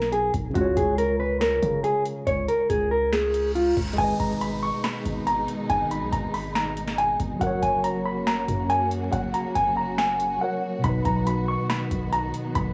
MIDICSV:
0, 0, Header, 1, 8, 480
1, 0, Start_track
1, 0, Tempo, 428571
1, 622, Time_signature, 4, 2, 24, 8
1, 14263, End_track
2, 0, Start_track
2, 0, Title_t, "Clean electric guitar"
2, 0, Program_c, 0, 27
2, 0, Note_on_c, 0, 70, 81
2, 112, Note_off_c, 0, 70, 0
2, 141, Note_on_c, 0, 68, 74
2, 347, Note_off_c, 0, 68, 0
2, 620, Note_on_c, 0, 66, 90
2, 827, Note_off_c, 0, 66, 0
2, 859, Note_on_c, 0, 68, 83
2, 1067, Note_off_c, 0, 68, 0
2, 1100, Note_on_c, 0, 70, 89
2, 1307, Note_off_c, 0, 70, 0
2, 1340, Note_on_c, 0, 71, 82
2, 1547, Note_off_c, 0, 71, 0
2, 1579, Note_on_c, 0, 70, 96
2, 2031, Note_off_c, 0, 70, 0
2, 2060, Note_on_c, 0, 68, 86
2, 2267, Note_off_c, 0, 68, 0
2, 2539, Note_on_c, 0, 73, 88
2, 2747, Note_off_c, 0, 73, 0
2, 2781, Note_on_c, 0, 70, 81
2, 2987, Note_off_c, 0, 70, 0
2, 3019, Note_on_c, 0, 68, 84
2, 3227, Note_off_c, 0, 68, 0
2, 3261, Note_on_c, 0, 70, 83
2, 3467, Note_off_c, 0, 70, 0
2, 3500, Note_on_c, 0, 68, 86
2, 3952, Note_off_c, 0, 68, 0
2, 3979, Note_on_c, 0, 65, 72
2, 4186, Note_off_c, 0, 65, 0
2, 4460, Note_on_c, 0, 80, 95
2, 4667, Note_off_c, 0, 80, 0
2, 4701, Note_on_c, 0, 82, 83
2, 4907, Note_off_c, 0, 82, 0
2, 4942, Note_on_c, 0, 83, 80
2, 5148, Note_off_c, 0, 83, 0
2, 5181, Note_on_c, 0, 85, 82
2, 5387, Note_off_c, 0, 85, 0
2, 5422, Note_on_c, 0, 83, 94
2, 5873, Note_off_c, 0, 83, 0
2, 5901, Note_on_c, 0, 82, 84
2, 6107, Note_off_c, 0, 82, 0
2, 6380, Note_on_c, 0, 80, 86
2, 6587, Note_off_c, 0, 80, 0
2, 6622, Note_on_c, 0, 83, 85
2, 6828, Note_off_c, 0, 83, 0
2, 6860, Note_on_c, 0, 82, 78
2, 7067, Note_off_c, 0, 82, 0
2, 7100, Note_on_c, 0, 83, 84
2, 7307, Note_off_c, 0, 83, 0
2, 7340, Note_on_c, 0, 82, 92
2, 7792, Note_off_c, 0, 82, 0
2, 7821, Note_on_c, 0, 80, 83
2, 8027, Note_off_c, 0, 80, 0
2, 8300, Note_on_c, 0, 78, 96
2, 8507, Note_off_c, 0, 78, 0
2, 8540, Note_on_c, 0, 80, 84
2, 8747, Note_off_c, 0, 80, 0
2, 8780, Note_on_c, 0, 82, 86
2, 8987, Note_off_c, 0, 82, 0
2, 9021, Note_on_c, 0, 83, 83
2, 9227, Note_off_c, 0, 83, 0
2, 9261, Note_on_c, 0, 82, 93
2, 9712, Note_off_c, 0, 82, 0
2, 9740, Note_on_c, 0, 80, 96
2, 9947, Note_off_c, 0, 80, 0
2, 10220, Note_on_c, 0, 78, 91
2, 10427, Note_off_c, 0, 78, 0
2, 10460, Note_on_c, 0, 82, 82
2, 10667, Note_off_c, 0, 82, 0
2, 10700, Note_on_c, 0, 80, 88
2, 10907, Note_off_c, 0, 80, 0
2, 10941, Note_on_c, 0, 82, 86
2, 11147, Note_off_c, 0, 82, 0
2, 11181, Note_on_c, 0, 80, 81
2, 11632, Note_off_c, 0, 80, 0
2, 11662, Note_on_c, 0, 78, 78
2, 11868, Note_off_c, 0, 78, 0
2, 12141, Note_on_c, 0, 83, 91
2, 12348, Note_off_c, 0, 83, 0
2, 12380, Note_on_c, 0, 82, 85
2, 12587, Note_off_c, 0, 82, 0
2, 12621, Note_on_c, 0, 83, 85
2, 12828, Note_off_c, 0, 83, 0
2, 12860, Note_on_c, 0, 85, 83
2, 13067, Note_off_c, 0, 85, 0
2, 13099, Note_on_c, 0, 83, 96
2, 13551, Note_off_c, 0, 83, 0
2, 13580, Note_on_c, 0, 82, 87
2, 13787, Note_off_c, 0, 82, 0
2, 14061, Note_on_c, 0, 83, 87
2, 14263, Note_off_c, 0, 83, 0
2, 14263, End_track
3, 0, Start_track
3, 0, Title_t, "Tine electric piano"
3, 0, Program_c, 1, 4
3, 0, Control_c, 1, 64, 127
3, 0, Note_on_c, 1, 47, 73
3, 0, Note_on_c, 1, 54, 66
3, 0, Note_on_c, 1, 59, 76
3, 0, Note_on_c, 1, 63, 64
3, 545, Note_off_c, 1, 47, 0
3, 564, Note_on_c, 1, 49, 65
3, 565, Note_off_c, 1, 54, 0
3, 585, Note_off_c, 1, 63, 0
3, 603, Note_on_c, 1, 56, 67
3, 605, Note_off_c, 1, 59, 0
3, 635, Control_c, 1, 64, 0
3, 644, Note_on_c, 1, 65, 69
3, 684, Note_on_c, 1, 73, 75
3, 820, Control_c, 1, 64, 127
3, 4388, Note_off_c, 1, 49, 0
3, 4390, Note_off_c, 1, 56, 0
3, 4404, Note_on_c, 1, 56, 73
3, 4428, Note_off_c, 1, 65, 0
3, 4444, Note_on_c, 1, 68, 66
3, 4448, Note_off_c, 1, 73, 0
3, 4475, Control_c, 1, 64, 0
3, 4483, Note_on_c, 1, 71, 63
3, 4524, Note_on_c, 1, 75, 81
3, 4684, Control_c, 1, 64, 127
3, 8228, Note_off_c, 1, 56, 0
3, 8242, Note_on_c, 1, 54, 71
3, 8248, Note_off_c, 1, 68, 0
3, 8267, Note_off_c, 1, 71, 0
3, 8282, Note_on_c, 1, 66, 66
3, 8288, Note_off_c, 1, 75, 0
3, 8314, Control_c, 1, 64, 0
3, 8322, Note_on_c, 1, 70, 68
3, 8362, Note_on_c, 1, 73, 77
3, 8492, Control_c, 1, 64, 127
3, 11587, Note_off_c, 1, 54, 0
3, 11607, Note_off_c, 1, 66, 0
3, 11627, Note_off_c, 1, 70, 0
3, 11630, Note_on_c, 1, 54, 49
3, 11647, Note_off_c, 1, 73, 0
3, 11649, Note_on_c, 1, 66, 47
3, 11669, Note_on_c, 1, 70, 49
3, 11690, Note_on_c, 1, 73, 57
3, 12078, Note_on_c, 1, 47, 72
3, 12104, Note_off_c, 1, 54, 0
3, 12118, Note_on_c, 1, 54, 68
3, 12135, Note_off_c, 1, 66, 0
3, 12145, Note_off_c, 1, 70, 0
3, 12155, Note_off_c, 1, 73, 0
3, 12157, Control_c, 1, 64, 0
3, 12158, Note_on_c, 1, 63, 66
3, 12197, Note_on_c, 1, 71, 76
3, 12373, Control_c, 1, 64, 127
3, 14263, Note_off_c, 1, 47, 0
3, 14263, Note_off_c, 1, 54, 0
3, 14263, Note_off_c, 1, 63, 0
3, 14263, Note_off_c, 1, 71, 0
3, 14263, End_track
4, 0, Start_track
4, 0, Title_t, "String section"
4, 0, Program_c, 2, 48
4, 4461, Note_on_c, 2, 47, 80
4, 4461, Note_on_c, 2, 51, 74
4, 4461, Note_on_c, 2, 56, 76
4, 4462, Note_on_c, 2, 63, 91
4, 8263, Note_off_c, 2, 47, 0
4, 8263, Note_off_c, 2, 51, 0
4, 8263, Note_off_c, 2, 56, 0
4, 8263, Note_off_c, 2, 63, 0
4, 8301, Note_on_c, 2, 49, 82
4, 8301, Note_on_c, 2, 54, 74
4, 8301, Note_on_c, 2, 58, 74
4, 8301, Note_on_c, 2, 66, 86
4, 12103, Note_off_c, 2, 49, 0
4, 12103, Note_off_c, 2, 54, 0
4, 12103, Note_off_c, 2, 58, 0
4, 12140, Note_on_c, 2, 51, 80
4, 12140, Note_on_c, 2, 59, 74
4, 12141, Note_on_c, 2, 54, 74
4, 14263, Note_off_c, 2, 51, 0
4, 14263, Note_off_c, 2, 54, 0
4, 14263, Note_off_c, 2, 59, 0
4, 14263, Note_off_c, 2, 66, 0
4, 14263, End_track
5, 0, Start_track
5, 0, Title_t, "808-style bass"
5, 0, Program_c, 3, 38
5, 0, Note_on_c, 3, 35, 106
5, 336, Note_off_c, 3, 35, 0
5, 380, Note_on_c, 3, 35, 106
5, 611, Note_off_c, 3, 35, 0
5, 621, Note_on_c, 3, 37, 111
5, 851, Note_off_c, 3, 37, 0
5, 861, Note_on_c, 3, 37, 105
5, 1783, Note_off_c, 3, 37, 0
5, 1820, Note_on_c, 3, 49, 103
5, 2512, Note_off_c, 3, 49, 0
5, 2541, Note_on_c, 3, 37, 111
5, 2771, Note_off_c, 3, 37, 0
5, 3022, Note_on_c, 3, 37, 106
5, 4176, Note_off_c, 3, 37, 0
5, 4221, Note_on_c, 3, 37, 110
5, 4451, Note_off_c, 3, 37, 0
5, 4461, Note_on_c, 3, 32, 116
5, 4692, Note_off_c, 3, 32, 0
5, 4702, Note_on_c, 3, 32, 105
5, 5277, Note_off_c, 3, 32, 0
5, 5661, Note_on_c, 3, 32, 104
5, 6122, Note_off_c, 3, 32, 0
5, 6381, Note_on_c, 3, 32, 108
5, 6741, Note_on_c, 3, 35, 105
5, 6758, Note_off_c, 3, 32, 0
5, 6855, Note_off_c, 3, 35, 0
5, 6862, Note_on_c, 3, 32, 106
5, 8017, Note_off_c, 3, 32, 0
5, 8061, Note_on_c, 3, 32, 107
5, 8291, Note_off_c, 3, 32, 0
5, 8301, Note_on_c, 3, 30, 114
5, 8531, Note_off_c, 3, 30, 0
5, 8541, Note_on_c, 3, 30, 107
5, 9463, Note_off_c, 3, 30, 0
5, 9501, Note_on_c, 3, 42, 106
5, 10192, Note_off_c, 3, 42, 0
5, 10221, Note_on_c, 3, 30, 115
5, 10451, Note_off_c, 3, 30, 0
5, 10701, Note_on_c, 3, 30, 107
5, 11623, Note_off_c, 3, 30, 0
5, 12141, Note_on_c, 3, 35, 112
5, 12371, Note_off_c, 3, 35, 0
5, 12381, Note_on_c, 3, 35, 106
5, 12957, Note_off_c, 3, 35, 0
5, 13340, Note_on_c, 3, 35, 107
5, 13801, Note_off_c, 3, 35, 0
5, 14060, Note_on_c, 3, 35, 110
5, 14263, Note_off_c, 3, 35, 0
5, 14263, End_track
6, 0, Start_track
6, 0, Title_t, "Downlifter"
6, 0, Program_c, 4, 103
6, 4461, Note_on_c, 4, 60, 91
6, 8301, Note_off_c, 4, 60, 0
6, 14263, End_track
7, 0, Start_track
7, 0, Title_t, "Reverse cymbal"
7, 0, Program_c, 5, 119
7, 3501, Note_on_c, 5, 60, 81
7, 4461, Note_off_c, 5, 60, 0
7, 14263, End_track
8, 0, Start_track
8, 0, Title_t, "Drums"
8, 20, Note_on_c, 9, 38, 68
8, 132, Note_off_c, 9, 38, 0
8, 141, Note_on_c, 9, 42, 64
8, 253, Note_off_c, 9, 42, 0
8, 380, Note_on_c, 9, 36, 99
8, 381, Note_on_c, 9, 42, 75
8, 492, Note_off_c, 9, 36, 0
8, 493, Note_off_c, 9, 42, 0
8, 621, Note_on_c, 9, 36, 125
8, 621, Note_on_c, 9, 42, 85
8, 733, Note_off_c, 9, 36, 0
8, 733, Note_off_c, 9, 42, 0
8, 861, Note_on_c, 9, 36, 104
8, 861, Note_on_c, 9, 42, 78
8, 973, Note_off_c, 9, 36, 0
8, 973, Note_off_c, 9, 42, 0
8, 1101, Note_on_c, 9, 42, 91
8, 1213, Note_off_c, 9, 42, 0
8, 1580, Note_on_c, 9, 26, 96
8, 1580, Note_on_c, 9, 38, 122
8, 1581, Note_on_c, 9, 42, 87
8, 1692, Note_off_c, 9, 26, 0
8, 1692, Note_off_c, 9, 38, 0
8, 1693, Note_off_c, 9, 42, 0
8, 1820, Note_on_c, 9, 36, 89
8, 1821, Note_on_c, 9, 42, 83
8, 1932, Note_off_c, 9, 36, 0
8, 1933, Note_off_c, 9, 42, 0
8, 2061, Note_on_c, 9, 42, 66
8, 2173, Note_off_c, 9, 42, 0
8, 2301, Note_on_c, 9, 42, 73
8, 2413, Note_off_c, 9, 42, 0
8, 2541, Note_on_c, 9, 36, 122
8, 2541, Note_on_c, 9, 42, 82
8, 2653, Note_off_c, 9, 36, 0
8, 2653, Note_off_c, 9, 42, 0
8, 2781, Note_on_c, 9, 42, 79
8, 2893, Note_off_c, 9, 42, 0
8, 3021, Note_on_c, 9, 36, 99
8, 3021, Note_on_c, 9, 42, 95
8, 3133, Note_off_c, 9, 36, 0
8, 3133, Note_off_c, 9, 42, 0
8, 3500, Note_on_c, 9, 38, 123
8, 3501, Note_on_c, 9, 26, 95
8, 3502, Note_on_c, 9, 42, 89
8, 3612, Note_off_c, 9, 38, 0
8, 3613, Note_off_c, 9, 26, 0
8, 3614, Note_off_c, 9, 42, 0
8, 3741, Note_on_c, 9, 42, 79
8, 3853, Note_off_c, 9, 42, 0
8, 3982, Note_on_c, 9, 42, 64
8, 4094, Note_off_c, 9, 42, 0
8, 4221, Note_on_c, 9, 36, 96
8, 4222, Note_on_c, 9, 42, 46
8, 4222, Note_on_c, 9, 46, 59
8, 4282, Note_off_c, 9, 42, 0
8, 4282, Note_on_c, 9, 42, 58
8, 4333, Note_off_c, 9, 36, 0
8, 4334, Note_off_c, 9, 46, 0
8, 4342, Note_off_c, 9, 42, 0
8, 4342, Note_on_c, 9, 42, 65
8, 4402, Note_off_c, 9, 42, 0
8, 4402, Note_on_c, 9, 42, 79
8, 4461, Note_on_c, 9, 36, 126
8, 4462, Note_off_c, 9, 42, 0
8, 4462, Note_on_c, 9, 42, 81
8, 4462, Note_on_c, 9, 49, 105
8, 4573, Note_off_c, 9, 36, 0
8, 4574, Note_off_c, 9, 42, 0
8, 4574, Note_off_c, 9, 49, 0
8, 4702, Note_on_c, 9, 36, 100
8, 4702, Note_on_c, 9, 42, 83
8, 4814, Note_off_c, 9, 36, 0
8, 4814, Note_off_c, 9, 42, 0
8, 4942, Note_on_c, 9, 42, 95
8, 5054, Note_off_c, 9, 42, 0
8, 5420, Note_on_c, 9, 26, 97
8, 5420, Note_on_c, 9, 38, 122
8, 5422, Note_on_c, 9, 42, 92
8, 5532, Note_off_c, 9, 26, 0
8, 5532, Note_off_c, 9, 38, 0
8, 5534, Note_off_c, 9, 42, 0
8, 5661, Note_on_c, 9, 36, 97
8, 5662, Note_on_c, 9, 42, 85
8, 5773, Note_off_c, 9, 36, 0
8, 5774, Note_off_c, 9, 42, 0
8, 5902, Note_on_c, 9, 42, 63
8, 6014, Note_off_c, 9, 42, 0
8, 6141, Note_on_c, 9, 42, 77
8, 6253, Note_off_c, 9, 42, 0
8, 6381, Note_on_c, 9, 36, 123
8, 6381, Note_on_c, 9, 42, 84
8, 6493, Note_off_c, 9, 36, 0
8, 6493, Note_off_c, 9, 42, 0
8, 6621, Note_on_c, 9, 42, 82
8, 6733, Note_off_c, 9, 42, 0
8, 6861, Note_on_c, 9, 36, 99
8, 6861, Note_on_c, 9, 42, 97
8, 6973, Note_off_c, 9, 36, 0
8, 6973, Note_off_c, 9, 42, 0
8, 7101, Note_on_c, 9, 46, 62
8, 7213, Note_off_c, 9, 46, 0
8, 7340, Note_on_c, 9, 26, 100
8, 7340, Note_on_c, 9, 38, 127
8, 7341, Note_on_c, 9, 42, 93
8, 7452, Note_off_c, 9, 26, 0
8, 7452, Note_off_c, 9, 38, 0
8, 7453, Note_off_c, 9, 42, 0
8, 7581, Note_on_c, 9, 42, 83
8, 7693, Note_off_c, 9, 42, 0
8, 7700, Note_on_c, 9, 38, 72
8, 7812, Note_off_c, 9, 38, 0
8, 7821, Note_on_c, 9, 42, 66
8, 7933, Note_off_c, 9, 42, 0
8, 8061, Note_on_c, 9, 36, 101
8, 8061, Note_on_c, 9, 42, 78
8, 8173, Note_off_c, 9, 36, 0
8, 8173, Note_off_c, 9, 42, 0
8, 8301, Note_on_c, 9, 36, 127
8, 8301, Note_on_c, 9, 42, 88
8, 8413, Note_off_c, 9, 36, 0
8, 8413, Note_off_c, 9, 42, 0
8, 8541, Note_on_c, 9, 36, 103
8, 8541, Note_on_c, 9, 42, 85
8, 8653, Note_off_c, 9, 36, 0
8, 8653, Note_off_c, 9, 42, 0
8, 8780, Note_on_c, 9, 42, 100
8, 8892, Note_off_c, 9, 42, 0
8, 9260, Note_on_c, 9, 26, 101
8, 9260, Note_on_c, 9, 38, 127
8, 9261, Note_on_c, 9, 42, 88
8, 9372, Note_off_c, 9, 26, 0
8, 9372, Note_off_c, 9, 38, 0
8, 9373, Note_off_c, 9, 42, 0
8, 9501, Note_on_c, 9, 36, 91
8, 9501, Note_on_c, 9, 42, 86
8, 9613, Note_off_c, 9, 36, 0
8, 9613, Note_off_c, 9, 42, 0
8, 9741, Note_on_c, 9, 42, 67
8, 9853, Note_off_c, 9, 42, 0
8, 9981, Note_on_c, 9, 42, 75
8, 10093, Note_off_c, 9, 42, 0
8, 10221, Note_on_c, 9, 36, 127
8, 10221, Note_on_c, 9, 42, 85
8, 10333, Note_off_c, 9, 36, 0
8, 10333, Note_off_c, 9, 42, 0
8, 10461, Note_on_c, 9, 42, 82
8, 10573, Note_off_c, 9, 42, 0
8, 10700, Note_on_c, 9, 42, 96
8, 10701, Note_on_c, 9, 36, 98
8, 10812, Note_off_c, 9, 42, 0
8, 10813, Note_off_c, 9, 36, 0
8, 11179, Note_on_c, 9, 26, 102
8, 11179, Note_on_c, 9, 38, 126
8, 11180, Note_on_c, 9, 42, 91
8, 11291, Note_off_c, 9, 26, 0
8, 11291, Note_off_c, 9, 38, 0
8, 11292, Note_off_c, 9, 42, 0
8, 11421, Note_on_c, 9, 42, 79
8, 11533, Note_off_c, 9, 42, 0
8, 12141, Note_on_c, 9, 36, 127
8, 12141, Note_on_c, 9, 42, 83
8, 12253, Note_off_c, 9, 36, 0
8, 12253, Note_off_c, 9, 42, 0
8, 12380, Note_on_c, 9, 42, 81
8, 12381, Note_on_c, 9, 36, 101
8, 12492, Note_off_c, 9, 42, 0
8, 12493, Note_off_c, 9, 36, 0
8, 12620, Note_on_c, 9, 42, 97
8, 12732, Note_off_c, 9, 42, 0
8, 13099, Note_on_c, 9, 26, 99
8, 13099, Note_on_c, 9, 38, 126
8, 13100, Note_on_c, 9, 42, 87
8, 13211, Note_off_c, 9, 26, 0
8, 13211, Note_off_c, 9, 38, 0
8, 13212, Note_off_c, 9, 42, 0
8, 13340, Note_on_c, 9, 36, 92
8, 13340, Note_on_c, 9, 42, 84
8, 13452, Note_off_c, 9, 36, 0
8, 13452, Note_off_c, 9, 42, 0
8, 13580, Note_on_c, 9, 42, 66
8, 13692, Note_off_c, 9, 42, 0
8, 13820, Note_on_c, 9, 42, 79
8, 13932, Note_off_c, 9, 42, 0
8, 14060, Note_on_c, 9, 36, 127
8, 14060, Note_on_c, 9, 42, 85
8, 14172, Note_off_c, 9, 36, 0
8, 14172, Note_off_c, 9, 42, 0
8, 14263, End_track
0, 0, End_of_file